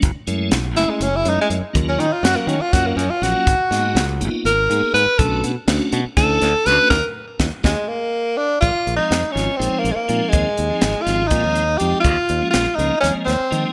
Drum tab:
HH |xxxxxxx|xxxxxxx|xxxxxxx|xxxxxxx|
SD |--oo---|--o-o-o|-oo----|--o-ooo|
BD |o------|o---o--|o------|o---o--|

HH |-------|xxxxxxx|xxxxxxx|xxxxxxx|
SD |o-oo---|--oo---|--oo---|--o-oo-|
BD |o-oo---|o------|o---o--|o------|